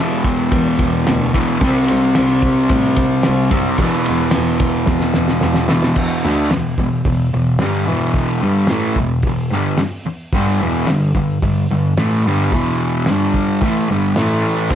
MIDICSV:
0, 0, Header, 1, 5, 480
1, 0, Start_track
1, 0, Key_signature, 1, "minor"
1, 0, Tempo, 545455
1, 1419, Time_signature, 4, 2, 24, 8
1, 12980, End_track
2, 0, Start_track
2, 0, Title_t, "Distorted electric guitar"
2, 0, Program_c, 0, 30
2, 0, Note_on_c, 0, 40, 98
2, 0, Note_on_c, 0, 47, 89
2, 0, Note_on_c, 0, 52, 103
2, 1157, Note_off_c, 0, 40, 0
2, 1167, Note_off_c, 0, 47, 0
2, 1176, Note_off_c, 0, 52, 0
2, 1179, Note_on_c, 0, 52, 102
2, 1199, Note_on_c, 0, 47, 79
2, 1217, Note_on_c, 0, 40, 71
2, 1399, Note_off_c, 0, 47, 0
2, 1403, Note_on_c, 0, 48, 101
2, 1422, Note_off_c, 0, 52, 0
2, 1424, Note_off_c, 0, 40, 0
2, 1426, Note_on_c, 0, 55, 91
2, 1440, Note_on_c, 0, 60, 101
2, 3072, Note_off_c, 0, 48, 0
2, 3080, Note_off_c, 0, 60, 0
2, 3091, Note_on_c, 0, 60, 86
2, 3103, Note_off_c, 0, 55, 0
2, 3106, Note_on_c, 0, 55, 74
2, 3124, Note_on_c, 0, 48, 69
2, 3317, Note_off_c, 0, 60, 0
2, 3327, Note_on_c, 0, 40, 86
2, 3334, Note_off_c, 0, 48, 0
2, 3346, Note_on_c, 0, 47, 104
2, 3356, Note_off_c, 0, 55, 0
2, 3360, Note_on_c, 0, 52, 105
2, 4988, Note_off_c, 0, 52, 0
2, 4991, Note_off_c, 0, 40, 0
2, 4998, Note_on_c, 0, 52, 96
2, 5001, Note_off_c, 0, 47, 0
2, 5023, Note_on_c, 0, 47, 85
2, 5042, Note_on_c, 0, 40, 78
2, 5229, Note_off_c, 0, 52, 0
2, 5235, Note_off_c, 0, 40, 0
2, 5241, Note_off_c, 0, 47, 0
2, 5246, Note_on_c, 0, 40, 94
2, 5256, Note_on_c, 0, 47, 94
2, 5262, Note_on_c, 0, 52, 104
2, 5480, Note_off_c, 0, 40, 0
2, 5485, Note_off_c, 0, 47, 0
2, 5488, Note_off_c, 0, 52, 0
2, 5493, Note_on_c, 0, 50, 88
2, 5498, Note_on_c, 0, 57, 94
2, 5511, Note_on_c, 0, 62, 106
2, 5723, Note_off_c, 0, 50, 0
2, 5726, Note_off_c, 0, 57, 0
2, 5732, Note_off_c, 0, 62, 0
2, 5734, Note_on_c, 0, 40, 62
2, 5738, Note_on_c, 0, 47, 80
2, 5923, Note_off_c, 0, 40, 0
2, 5925, Note_off_c, 0, 47, 0
2, 5974, Note_on_c, 0, 40, 57
2, 5978, Note_on_c, 0, 47, 78
2, 6163, Note_off_c, 0, 40, 0
2, 6165, Note_off_c, 0, 47, 0
2, 6210, Note_on_c, 0, 40, 66
2, 6211, Note_on_c, 0, 47, 72
2, 6401, Note_off_c, 0, 40, 0
2, 6402, Note_off_c, 0, 47, 0
2, 6458, Note_on_c, 0, 47, 71
2, 6460, Note_on_c, 0, 40, 59
2, 6645, Note_off_c, 0, 47, 0
2, 6646, Note_off_c, 0, 40, 0
2, 6684, Note_on_c, 0, 43, 94
2, 6699, Note_on_c, 0, 50, 94
2, 6704, Note_on_c, 0, 55, 106
2, 6918, Note_off_c, 0, 43, 0
2, 6921, Note_on_c, 0, 40, 82
2, 6927, Note_off_c, 0, 50, 0
2, 6927, Note_off_c, 0, 55, 0
2, 6930, Note_on_c, 0, 47, 98
2, 6931, Note_on_c, 0, 52, 101
2, 7399, Note_off_c, 0, 40, 0
2, 7403, Note_off_c, 0, 47, 0
2, 7403, Note_off_c, 0, 52, 0
2, 7405, Note_on_c, 0, 43, 89
2, 7417, Note_on_c, 0, 50, 93
2, 7425, Note_on_c, 0, 55, 99
2, 7641, Note_off_c, 0, 43, 0
2, 7646, Note_off_c, 0, 50, 0
2, 7650, Note_off_c, 0, 55, 0
2, 7657, Note_on_c, 0, 45, 93
2, 7662, Note_on_c, 0, 52, 101
2, 7674, Note_on_c, 0, 57, 91
2, 7887, Note_off_c, 0, 45, 0
2, 7889, Note_off_c, 0, 52, 0
2, 7895, Note_off_c, 0, 57, 0
2, 7917, Note_on_c, 0, 40, 64
2, 7920, Note_on_c, 0, 47, 75
2, 8096, Note_off_c, 0, 40, 0
2, 8098, Note_off_c, 0, 47, 0
2, 8156, Note_on_c, 0, 40, 66
2, 8159, Note_on_c, 0, 47, 68
2, 8336, Note_off_c, 0, 40, 0
2, 8337, Note_off_c, 0, 47, 0
2, 8387, Note_on_c, 0, 43, 106
2, 8394, Note_on_c, 0, 50, 100
2, 8398, Note_on_c, 0, 55, 99
2, 8613, Note_off_c, 0, 43, 0
2, 8616, Note_off_c, 0, 50, 0
2, 8618, Note_off_c, 0, 55, 0
2, 9101, Note_on_c, 0, 43, 89
2, 9109, Note_on_c, 0, 50, 98
2, 9120, Note_on_c, 0, 55, 101
2, 9330, Note_off_c, 0, 43, 0
2, 9335, Note_off_c, 0, 50, 0
2, 9340, Note_off_c, 0, 55, 0
2, 9340, Note_on_c, 0, 40, 87
2, 9352, Note_on_c, 0, 47, 96
2, 9355, Note_on_c, 0, 52, 105
2, 9571, Note_off_c, 0, 40, 0
2, 9576, Note_off_c, 0, 47, 0
2, 9577, Note_off_c, 0, 52, 0
2, 9581, Note_on_c, 0, 43, 70
2, 9589, Note_on_c, 0, 50, 71
2, 9770, Note_off_c, 0, 43, 0
2, 9774, Note_off_c, 0, 50, 0
2, 9814, Note_on_c, 0, 43, 69
2, 9817, Note_on_c, 0, 50, 66
2, 10007, Note_off_c, 0, 43, 0
2, 10008, Note_off_c, 0, 50, 0
2, 10060, Note_on_c, 0, 43, 67
2, 10064, Note_on_c, 0, 50, 69
2, 10250, Note_off_c, 0, 43, 0
2, 10252, Note_off_c, 0, 50, 0
2, 10307, Note_on_c, 0, 43, 62
2, 10310, Note_on_c, 0, 50, 76
2, 10494, Note_off_c, 0, 43, 0
2, 10495, Note_off_c, 0, 50, 0
2, 10540, Note_on_c, 0, 45, 93
2, 10546, Note_on_c, 0, 52, 91
2, 10552, Note_on_c, 0, 57, 98
2, 10771, Note_off_c, 0, 45, 0
2, 10775, Note_off_c, 0, 52, 0
2, 10778, Note_off_c, 0, 57, 0
2, 10795, Note_on_c, 0, 43, 87
2, 10808, Note_on_c, 0, 50, 104
2, 10811, Note_on_c, 0, 55, 102
2, 11020, Note_off_c, 0, 43, 0
2, 11026, Note_off_c, 0, 50, 0
2, 11027, Note_off_c, 0, 55, 0
2, 11031, Note_on_c, 0, 40, 99
2, 11040, Note_on_c, 0, 47, 99
2, 11045, Note_on_c, 0, 52, 121
2, 11496, Note_off_c, 0, 40, 0
2, 11500, Note_on_c, 0, 43, 89
2, 11502, Note_off_c, 0, 47, 0
2, 11505, Note_off_c, 0, 52, 0
2, 11511, Note_on_c, 0, 50, 95
2, 11523, Note_on_c, 0, 55, 99
2, 11973, Note_off_c, 0, 43, 0
2, 11979, Note_off_c, 0, 50, 0
2, 11984, Note_off_c, 0, 55, 0
2, 11988, Note_on_c, 0, 45, 81
2, 11997, Note_on_c, 0, 52, 99
2, 12001, Note_on_c, 0, 57, 100
2, 12217, Note_off_c, 0, 45, 0
2, 12219, Note_on_c, 0, 43, 94
2, 12222, Note_off_c, 0, 52, 0
2, 12223, Note_off_c, 0, 57, 0
2, 12228, Note_on_c, 0, 50, 98
2, 12236, Note_on_c, 0, 55, 110
2, 12453, Note_off_c, 0, 43, 0
2, 12456, Note_off_c, 0, 50, 0
2, 12459, Note_on_c, 0, 45, 86
2, 12461, Note_off_c, 0, 55, 0
2, 12471, Note_on_c, 0, 52, 98
2, 12478, Note_on_c, 0, 57, 96
2, 12933, Note_off_c, 0, 45, 0
2, 12939, Note_off_c, 0, 52, 0
2, 12943, Note_off_c, 0, 57, 0
2, 12947, Note_on_c, 0, 48, 100
2, 12952, Note_on_c, 0, 55, 101
2, 12980, Note_off_c, 0, 48, 0
2, 12980, Note_off_c, 0, 55, 0
2, 12980, End_track
3, 0, Start_track
3, 0, Title_t, "Cello"
3, 0, Program_c, 1, 42
3, 0, Note_on_c, 1, 40, 98
3, 327, Note_off_c, 1, 40, 0
3, 467, Note_on_c, 1, 40, 93
3, 642, Note_off_c, 1, 40, 0
3, 699, Note_on_c, 1, 40, 92
3, 877, Note_off_c, 1, 40, 0
3, 956, Note_on_c, 1, 38, 98
3, 1306, Note_off_c, 1, 38, 0
3, 1425, Note_on_c, 1, 36, 100
3, 1600, Note_off_c, 1, 36, 0
3, 1681, Note_on_c, 1, 36, 95
3, 1850, Note_off_c, 1, 36, 0
3, 1912, Note_on_c, 1, 36, 99
3, 2084, Note_off_c, 1, 36, 0
3, 2138, Note_on_c, 1, 36, 81
3, 2315, Note_off_c, 1, 36, 0
3, 2385, Note_on_c, 1, 45, 102
3, 2560, Note_off_c, 1, 45, 0
3, 2621, Note_on_c, 1, 36, 93
3, 2797, Note_off_c, 1, 36, 0
3, 2879, Note_on_c, 1, 36, 98
3, 3047, Note_off_c, 1, 36, 0
3, 3100, Note_on_c, 1, 42, 88
3, 3275, Note_off_c, 1, 42, 0
3, 3337, Note_on_c, 1, 40, 105
3, 3513, Note_off_c, 1, 40, 0
3, 3591, Note_on_c, 1, 40, 92
3, 3761, Note_off_c, 1, 40, 0
3, 3837, Note_on_c, 1, 40, 93
3, 4183, Note_off_c, 1, 40, 0
3, 4291, Note_on_c, 1, 40, 100
3, 4469, Note_off_c, 1, 40, 0
3, 4547, Note_on_c, 1, 40, 96
3, 4718, Note_off_c, 1, 40, 0
3, 4774, Note_on_c, 1, 40, 104
3, 5127, Note_off_c, 1, 40, 0
3, 5253, Note_on_c, 1, 40, 88
3, 5474, Note_off_c, 1, 40, 0
3, 5494, Note_on_c, 1, 38, 95
3, 5715, Note_off_c, 1, 38, 0
3, 5742, Note_on_c, 1, 40, 76
3, 5958, Note_off_c, 1, 40, 0
3, 5970, Note_on_c, 1, 40, 74
3, 6192, Note_off_c, 1, 40, 0
3, 6212, Note_on_c, 1, 40, 83
3, 6434, Note_off_c, 1, 40, 0
3, 6463, Note_on_c, 1, 40, 77
3, 6680, Note_off_c, 1, 40, 0
3, 6690, Note_on_c, 1, 43, 95
3, 6912, Note_off_c, 1, 43, 0
3, 6945, Note_on_c, 1, 40, 85
3, 7384, Note_off_c, 1, 40, 0
3, 7415, Note_on_c, 1, 43, 91
3, 7636, Note_off_c, 1, 43, 0
3, 7659, Note_on_c, 1, 45, 93
3, 7878, Note_off_c, 1, 45, 0
3, 7888, Note_on_c, 1, 40, 68
3, 8113, Note_off_c, 1, 40, 0
3, 8133, Note_on_c, 1, 40, 77
3, 8356, Note_off_c, 1, 40, 0
3, 8365, Note_on_c, 1, 43, 93
3, 8592, Note_off_c, 1, 43, 0
3, 8619, Note_on_c, 1, 40, 43
3, 8839, Note_off_c, 1, 40, 0
3, 8865, Note_on_c, 1, 40, 39
3, 9083, Note_off_c, 1, 40, 0
3, 9094, Note_on_c, 1, 43, 87
3, 9317, Note_off_c, 1, 43, 0
3, 9339, Note_on_c, 1, 40, 95
3, 9560, Note_off_c, 1, 40, 0
3, 9591, Note_on_c, 1, 43, 87
3, 9807, Note_off_c, 1, 43, 0
3, 9821, Note_on_c, 1, 43, 71
3, 10042, Note_off_c, 1, 43, 0
3, 10063, Note_on_c, 1, 43, 81
3, 10283, Note_off_c, 1, 43, 0
3, 10304, Note_on_c, 1, 43, 83
3, 10524, Note_off_c, 1, 43, 0
3, 10546, Note_on_c, 1, 45, 103
3, 10765, Note_off_c, 1, 45, 0
3, 10783, Note_on_c, 1, 43, 91
3, 11004, Note_off_c, 1, 43, 0
3, 11030, Note_on_c, 1, 40, 90
3, 11471, Note_off_c, 1, 40, 0
3, 11521, Note_on_c, 1, 43, 91
3, 11958, Note_off_c, 1, 43, 0
3, 11987, Note_on_c, 1, 45, 92
3, 12207, Note_off_c, 1, 45, 0
3, 12238, Note_on_c, 1, 43, 91
3, 12453, Note_off_c, 1, 43, 0
3, 12475, Note_on_c, 1, 45, 96
3, 12915, Note_off_c, 1, 45, 0
3, 12945, Note_on_c, 1, 36, 91
3, 12980, Note_off_c, 1, 36, 0
3, 12980, End_track
4, 0, Start_track
4, 0, Title_t, "Muted distorted electric guitar strokes"
4, 8621, Note_on_c, 9, 29, 62
4, 8709, Note_off_c, 9, 29, 0
4, 8857, Note_on_c, 9, 29, 62
4, 8945, Note_off_c, 9, 29, 0
4, 12980, End_track
5, 0, Start_track
5, 0, Title_t, "Drums"
5, 215, Note_on_c, 9, 36, 93
5, 217, Note_on_c, 9, 51, 82
5, 303, Note_off_c, 9, 36, 0
5, 305, Note_off_c, 9, 51, 0
5, 453, Note_on_c, 9, 51, 112
5, 456, Note_on_c, 9, 36, 112
5, 541, Note_off_c, 9, 51, 0
5, 544, Note_off_c, 9, 36, 0
5, 694, Note_on_c, 9, 51, 80
5, 697, Note_on_c, 9, 36, 91
5, 782, Note_off_c, 9, 51, 0
5, 785, Note_off_c, 9, 36, 0
5, 940, Note_on_c, 9, 38, 116
5, 943, Note_on_c, 9, 51, 105
5, 1028, Note_off_c, 9, 38, 0
5, 1031, Note_off_c, 9, 51, 0
5, 1183, Note_on_c, 9, 36, 94
5, 1189, Note_on_c, 9, 51, 88
5, 1271, Note_off_c, 9, 36, 0
5, 1277, Note_off_c, 9, 51, 0
5, 1416, Note_on_c, 9, 51, 114
5, 1420, Note_on_c, 9, 36, 118
5, 1504, Note_off_c, 9, 51, 0
5, 1508, Note_off_c, 9, 36, 0
5, 1656, Note_on_c, 9, 51, 78
5, 1744, Note_off_c, 9, 51, 0
5, 1892, Note_on_c, 9, 38, 122
5, 1895, Note_on_c, 9, 51, 119
5, 1980, Note_off_c, 9, 38, 0
5, 1983, Note_off_c, 9, 51, 0
5, 2130, Note_on_c, 9, 51, 88
5, 2135, Note_on_c, 9, 36, 95
5, 2218, Note_off_c, 9, 51, 0
5, 2223, Note_off_c, 9, 36, 0
5, 2369, Note_on_c, 9, 51, 107
5, 2375, Note_on_c, 9, 36, 119
5, 2457, Note_off_c, 9, 51, 0
5, 2463, Note_off_c, 9, 36, 0
5, 2608, Note_on_c, 9, 51, 80
5, 2614, Note_on_c, 9, 36, 92
5, 2696, Note_off_c, 9, 51, 0
5, 2702, Note_off_c, 9, 36, 0
5, 2845, Note_on_c, 9, 38, 109
5, 2848, Note_on_c, 9, 51, 103
5, 2933, Note_off_c, 9, 38, 0
5, 2936, Note_off_c, 9, 51, 0
5, 3088, Note_on_c, 9, 51, 79
5, 3092, Note_on_c, 9, 36, 101
5, 3176, Note_off_c, 9, 51, 0
5, 3180, Note_off_c, 9, 36, 0
5, 3324, Note_on_c, 9, 51, 99
5, 3331, Note_on_c, 9, 36, 111
5, 3412, Note_off_c, 9, 51, 0
5, 3419, Note_off_c, 9, 36, 0
5, 3571, Note_on_c, 9, 51, 74
5, 3659, Note_off_c, 9, 51, 0
5, 3795, Note_on_c, 9, 38, 127
5, 3797, Note_on_c, 9, 51, 99
5, 3883, Note_off_c, 9, 38, 0
5, 3885, Note_off_c, 9, 51, 0
5, 4044, Note_on_c, 9, 51, 78
5, 4049, Note_on_c, 9, 36, 97
5, 4132, Note_off_c, 9, 51, 0
5, 4137, Note_off_c, 9, 36, 0
5, 4278, Note_on_c, 9, 38, 69
5, 4289, Note_on_c, 9, 36, 126
5, 4366, Note_off_c, 9, 38, 0
5, 4377, Note_off_c, 9, 36, 0
5, 4401, Note_on_c, 9, 38, 60
5, 4489, Note_off_c, 9, 38, 0
5, 4521, Note_on_c, 9, 38, 81
5, 4609, Note_off_c, 9, 38, 0
5, 4644, Note_on_c, 9, 38, 78
5, 4732, Note_off_c, 9, 38, 0
5, 4762, Note_on_c, 9, 38, 92
5, 4849, Note_off_c, 9, 38, 0
5, 4879, Note_on_c, 9, 38, 82
5, 4967, Note_off_c, 9, 38, 0
5, 5005, Note_on_c, 9, 38, 109
5, 5093, Note_off_c, 9, 38, 0
5, 5126, Note_on_c, 9, 38, 98
5, 5214, Note_off_c, 9, 38, 0
5, 5242, Note_on_c, 9, 49, 124
5, 5248, Note_on_c, 9, 36, 107
5, 5330, Note_off_c, 9, 49, 0
5, 5336, Note_off_c, 9, 36, 0
5, 5726, Note_on_c, 9, 38, 119
5, 5729, Note_on_c, 9, 46, 63
5, 5814, Note_off_c, 9, 38, 0
5, 5817, Note_off_c, 9, 46, 0
5, 5966, Note_on_c, 9, 36, 78
5, 6054, Note_off_c, 9, 36, 0
5, 6201, Note_on_c, 9, 46, 60
5, 6205, Note_on_c, 9, 36, 115
5, 6289, Note_off_c, 9, 46, 0
5, 6293, Note_off_c, 9, 36, 0
5, 6678, Note_on_c, 9, 38, 106
5, 6680, Note_on_c, 9, 46, 56
5, 6766, Note_off_c, 9, 38, 0
5, 6768, Note_off_c, 9, 46, 0
5, 7158, Note_on_c, 9, 46, 56
5, 7164, Note_on_c, 9, 36, 108
5, 7246, Note_off_c, 9, 46, 0
5, 7252, Note_off_c, 9, 36, 0
5, 7632, Note_on_c, 9, 38, 119
5, 7634, Note_on_c, 9, 46, 58
5, 7720, Note_off_c, 9, 38, 0
5, 7722, Note_off_c, 9, 46, 0
5, 7885, Note_on_c, 9, 36, 75
5, 7973, Note_off_c, 9, 36, 0
5, 8117, Note_on_c, 9, 46, 63
5, 8125, Note_on_c, 9, 36, 124
5, 8205, Note_off_c, 9, 46, 0
5, 8213, Note_off_c, 9, 36, 0
5, 8603, Note_on_c, 9, 38, 105
5, 8606, Note_on_c, 9, 46, 64
5, 8691, Note_off_c, 9, 38, 0
5, 8694, Note_off_c, 9, 46, 0
5, 9086, Note_on_c, 9, 46, 58
5, 9087, Note_on_c, 9, 36, 119
5, 9174, Note_off_c, 9, 46, 0
5, 9175, Note_off_c, 9, 36, 0
5, 9567, Note_on_c, 9, 38, 126
5, 9570, Note_on_c, 9, 46, 69
5, 9655, Note_off_c, 9, 38, 0
5, 9658, Note_off_c, 9, 46, 0
5, 9810, Note_on_c, 9, 36, 81
5, 9898, Note_off_c, 9, 36, 0
5, 10052, Note_on_c, 9, 46, 66
5, 10054, Note_on_c, 9, 36, 115
5, 10140, Note_off_c, 9, 46, 0
5, 10142, Note_off_c, 9, 36, 0
5, 10538, Note_on_c, 9, 38, 107
5, 10541, Note_on_c, 9, 46, 61
5, 10626, Note_off_c, 9, 38, 0
5, 10629, Note_off_c, 9, 46, 0
5, 11017, Note_on_c, 9, 46, 52
5, 11019, Note_on_c, 9, 36, 111
5, 11105, Note_off_c, 9, 46, 0
5, 11107, Note_off_c, 9, 36, 0
5, 11493, Note_on_c, 9, 38, 122
5, 11496, Note_on_c, 9, 46, 58
5, 11581, Note_off_c, 9, 38, 0
5, 11584, Note_off_c, 9, 46, 0
5, 11741, Note_on_c, 9, 36, 85
5, 11829, Note_off_c, 9, 36, 0
5, 11982, Note_on_c, 9, 46, 59
5, 11983, Note_on_c, 9, 36, 110
5, 12070, Note_off_c, 9, 46, 0
5, 12071, Note_off_c, 9, 36, 0
5, 12461, Note_on_c, 9, 38, 118
5, 12463, Note_on_c, 9, 46, 58
5, 12549, Note_off_c, 9, 38, 0
5, 12551, Note_off_c, 9, 46, 0
5, 12935, Note_on_c, 9, 49, 91
5, 12941, Note_on_c, 9, 36, 113
5, 12980, Note_off_c, 9, 36, 0
5, 12980, Note_off_c, 9, 49, 0
5, 12980, End_track
0, 0, End_of_file